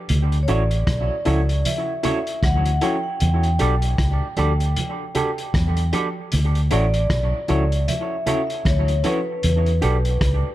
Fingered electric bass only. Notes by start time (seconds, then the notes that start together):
0.10 D2
0.49 A1
0.88 B1
1.27 C#2
2.43 D2
3.22 E2
3.61 B1
3.99 C#2
4.39 D2
5.55 E2
6.34 D2
6.72 A1
7.10 B1
7.50 C#2
8.66 D2
9.44 E2
9.83 B1
10.22 C#2